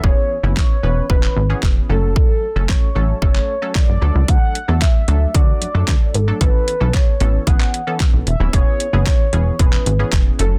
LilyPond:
<<
  \new Staff \with { instrumentName = "Soft synth lead" } { \time 4/4 \key e \mixolydian \tempo 4 = 113 cis''4 cis''4 b'4 r8 a'8 | a'4 cis''4 cis''4 d''4 | fis''4 e''4 d''4. a'8 | b'4 cis''4 fis''4 r8 e''8 |
cis''4 cis''4 b'4 r8 a'8 | }
  \new Staff \with { instrumentName = "Analog polysynth" } { \time 4/4 \key e \mixolydian <e b cis' gis'>8. <e b cis' e'>8. <e b cis' b'>8 <e b cis' b'>8. <e b cis' gis'>8. <fis a cis' a'>8~ | <fis a cis' a'>8 r16 <fis a cis' a'>8. <fis a cis' a'>8 <fis a cis' a'>8. <fis a cis' a'>8. <fis a d' a'>8~ | <fis a d' a'>8 r16 <fis a d' a'>8. <fis a d' a'>8 <fis a d' fis'>8. <fis a d' a'>8. r16 <fis a d' a'>16 | <e b cis' a'>8. <e b cis' a'>8. <e b cis' a'>8 <e b cis' gis'>8. <e b cis' a'>8. r16 <e b cis' e'>16 |
<e b cis' gis'>8. <e b cis' gis'>8. <e b cis' gis'>8 <e b cis' gis'>8. <e b cis' gis'>8. <fis a cis' a'>8 | }
  \new Staff \with { instrumentName = "Analog synth bass" } { \clef bass \time 4/4 \key e \mixolydian e,,16 r8 fis,,8 r16 e,,8 e,,8 gis,,8 e,,8 fis,,8~ | fis,,16 r8 fis,,8 r16 a,,8 fis,,8 r8. fis,,16 d,16 cis,16 | d,16 r8 e,8 r16 d,8 d,8 fis,16 fis,16 d,16 r16 gis,,8 | a,,16 r8 b,,8 r16 a,,8 a,,8 r8. b,,16 e,,16 dis,,16 |
e,,16 r8 fis,,8 r16 e,,8 e,,8 gis,,8 e,,8 fis,,8 | }
  \new DrumStaff \with { instrumentName = "Drums" } \drummode { \time 4/4 bd4 <hc bd sn>4 bd16 hc8. <hc bd sn>4 | bd4 <hc bd sn>4 bd16 hc8. <hc bd sn>4 | <hh bd>8 hh8 <hc hh bd sn>8 hh8 <hh bd>8 hh8 <hc hh bd sn>8 hh8 | <hh bd>8 hh8 <hc hh bd sn>8 hh8 <hh bd>16 hc16 hh8 <hc hh bd sn>8 hh8 |
<hh bd>8 hh8 <hc hh bd sn>8 hh8 <hh bd>16 hc16 hh8 <hc hh bd sn>8 hh8 | }
>>